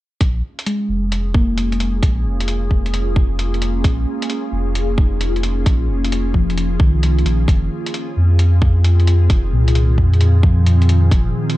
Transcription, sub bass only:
0.21 A#1
0.89 F1
2.03 A#1
2.25 F1
2.71 F1
3.84 A#1
4.52 F1
5.66 A#1
5.88 F1
6.34 F1
6.80 C2
7.25 A#1
7.48 F1
8.17 F2
9.30 F1
9.52 C2
9.98 F2
11.12 F1

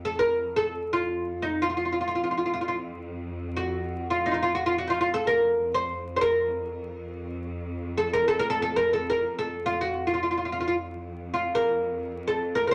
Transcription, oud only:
0.05 A4
0.19 A#4
0.56 A4
0.93 F4
1.42 D#4
1.62 F4
1.70 F4
1.77 F4
1.85 F4
1.92 F4
2.01 F4
2.08 F4
2.15 F4
2.24 F4
2.31 F4
2.38 F4
2.46 F4
2.54 F4
2.61 F4
2.68 F4
3.57 F#4
4.10 F4
4.26 D#4
4.31 D#4 F4
4.43 F4
4.55 F#4
4.66 F4
4.78 F#4
4.87 D#4 F4
5.01 F4
5.14 A4
5.27 A#4
5.75 C5
6.16 C5
6.21 A#4
7.97 A4
8.13 A#4
8.28 A4
8.39 A#4
8.50 A4
8.62 A4
8.76 A#4
8.93 A4
9.10 A#4
9.39 A4
9.66 F4
9.81 F#4
10.07 F4
10.14 F4
10.23 F4
10.31 F4
10.38 F4
10.45 F4
10.52 F4
10.60 F4
10.68 F4
11.34 F4
11.55 A#4
12.27 A4
12.55 A#4
12.67 A#4 C5

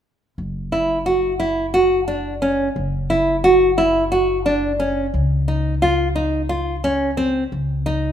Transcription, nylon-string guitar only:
0.72 E4
1.06 F#4
1.40 E4
1.74 F#4
2.08 D4
2.42 C#4
3.10 E4
3.44 F#4
3.78 E4
4.12 F#4
4.46 D4
4.80 C#4
5.48 D#4
5.82 F4
6.16 D#4
6.49 F4
6.84 C#4
7.17 C4
7.86 D#4

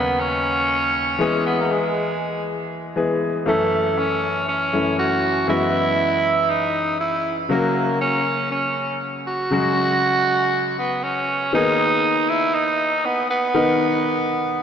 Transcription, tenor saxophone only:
Already playing: B3
0.20 C#4
1.46 B3
1.60 A#3 B3
1.66 A#3
1.71 G#3
3.48 A3
3.98 C#4
4.49 C#4
4.99 F#4
5.49 E4
6.50 D#4
7.00 E4
7.51 A#3
8.01 C#4
8.51 C#4
9.27 F#4
10.79 B3
11.04 C#4
11.54 D#4
12.29 E4
12.54 D#4
13.05 B3
13.30 B3

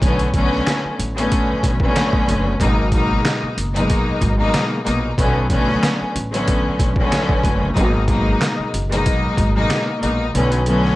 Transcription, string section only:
0.01 D3 F#3 A3 B3 C#4
0.34 D3 F#3 A3 B3 C#4
1.15 D3 F#3 A3 B3 C#4
1.81 D3 F#3 A3 B3 C#4
2.58 B2 F#3 G#3 A#3 D#4
2.91 B2 F#3 G#3 A#3 D#4
3.74 B2 F#3 G#3 A#3 D#4
4.37 B2 F#3 G#3 A#3 D#4
4.83 B2 F#3 G#3 A#3 D#4
5.17 D3 F#3 A3 B3 C#4
5.50 D3 F#3 A3 B3 C#4
6.31 D3 F#3 A3 B3 C#4
6.97 D3 F#3 A3 B3 C#4
7.74 B2 F#3 G#3 A#3 D#4
8.07 B2 F#3 G#3 A#3 D#4
8.90 B2 F#3 G#3 A#3 D#4
9.53 B2 F#3 G#3 A#3 D#4
9.99 B2 F#3 G#3 A#3 D#4
10.33 D3 F#3 A3 B3 C#4
10.66 D3 F#3 A3 B3 C#4

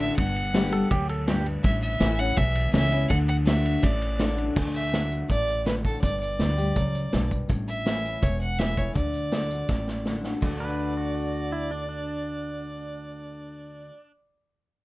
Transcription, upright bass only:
0.18 G1
0.91 D2
1.64 A1
2.01 A1
2.38 B1
2.74 C#2
3.11 D2
3.84 A1
4.57 D2
5.30 A1
6.03 G1
6.39 D2
6.77 C#2
7.13 B1
7.50 A1
8.23 E1
8.96 D2
9.69 A1
10.42 D2

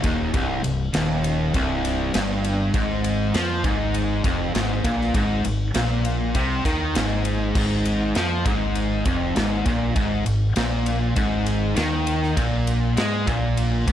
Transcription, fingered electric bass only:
0.04 D#1
0.34 C1
0.64 C1
0.94 D#1
1.55 C1
2.15 G1
2.74 G#1
3.34 F2
3.64 G#1
4.24 F1
4.55 G#1
4.84 A#1
5.15 G#1
5.45 G#1
5.75 A#1
6.35 C2
6.65 D#2
6.96 G#1
7.56 G#1
8.16 F2
8.46 G#1
9.06 F1
9.37 G#1
9.66 A#1
9.97 G#1
10.27 G#1
10.57 A#1
11.17 G#1
11.76 D#2
12.38 A#1
12.97 G#2
13.28 A#1
13.88 G#1

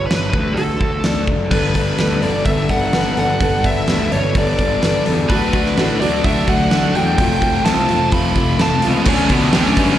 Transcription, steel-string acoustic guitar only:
Already playing: G2 G3
0.10 D4
0.33 D3
0.57 F#4
0.80 A3
1.04 D4
1.28 D3
1.50 G3 B3 D4 A4
1.74 B3 D4 A4
1.97 G3 B3 D4 A4
2.22 B3 D4 A4
2.46 G3 B3 D4 A4
2.69 B3 D4 A4
2.92 G3 B3 D4 A4
3.16 B3 D4 A4
3.39 G3 B3 D4 A4
3.63 B3 D4 A4
3.87 G3 B3 D4 A4
4.11 B3 D4 A4
4.35 G3 B3 D4 A4
4.58 B3 D4 A4
4.81 G3 B3 D4 A4
5.05 B3 D4 A4
5.29 D3 A3 D4 F#4
5.53 A3 D4 F#4
5.77 D3 A3 D4 F#4
6.00 A3 D4 F#4
6.24 D3 A3 D4 F#4
6.47 A3 D4 F#4
6.71 D3 A3 D4 F#4
6.95 A3 D4 F#4
7.18 F2 C3 F3 A3 C4 F4
7.41 F3 A3 C4 F4
7.64 F2 C3 F3 A3 C4 F4
7.89 F3 A3 C4 F4
8.13 F3 A3 C4 F4
8.36 F3 A3 C4 F4
8.59 F2 C3 F3 A3 C4 F4
8.83 F3 A3 C4 F4

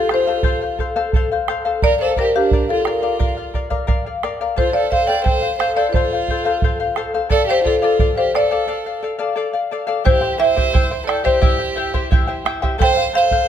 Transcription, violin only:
Already playing: F4
0.14 F4
1.83 A#4
2.01 A4
2.20 G4
2.38 D4
2.72 F4
2.88 F4
4.59 F4
4.75 A4
4.93 C5
5.09 D5
5.25 C5
5.59 C5
5.77 A4
5.92 F4
7.31 A4
7.47 G4
7.64 F4
7.82 F4
8.18 G4
8.35 A4
10.06 G4
10.41 C5
11.07 A4
11.24 G4
12.82 C5
13.16 C5

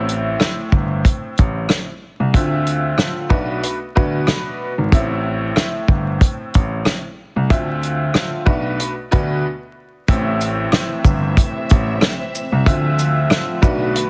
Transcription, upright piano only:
Already playing: A2 A3 C4 E4 E5
2.34 D3 A3 C4 F4 E5
3.29 B2 A3 D4 F#4 B4
3.95 B2 A3 D4 F#4 B4
4.92 A2 A3 C4 E4 E5
7.50 D3 A3 C4 F4 E5
8.45 B2 A3 D4 F#4 B4
9.11 B2 A3 D4 F#4 B4
10.09 A2 A3 C4 E4 E5
12.66 D3 A3 C4 F4 E5
13.61 B2 A3 D4 F#4 B4

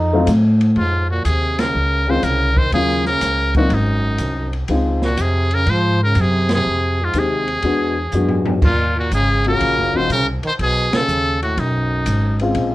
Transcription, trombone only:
Already playing: D#4
0.76 G#2
1.11 A#2
1.27 C3
1.60 C#3
2.08 D#3
2.23 C#3
2.56 D#3
2.73 C#3
3.06 C#3
3.57 A#2
3.72 F#2
5.03 A#2
5.19 C3
5.54 C#3
5.70 F3
6.04 C#3
6.18 C3
6.54 C3
7.02 G#2
7.16 C3
8.63 A#2
8.97 A#2
9.13 C#3
9.48 C#3
9.95 D#3
10.12 C#3
10.44 D#3
10.62 B2
10.94 C#3
11.43 A2
11.58 F#2

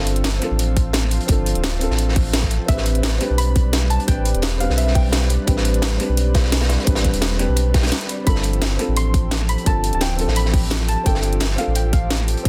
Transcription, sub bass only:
Already playing: G1
0.51 A1
1.29 G1
1.55 D1
1.90 A1
2.68 A1
3.30 B1
4.08 A1
4.35 E1
4.70 B1
5.48 A1
6.09 B1
6.87 A1
7.14 E1
7.49 B1
8.27 G1
8.88 A1
9.66 G1
9.93 D1
10.28 A1
11.06 G1
11.67 A1
12.45 G1

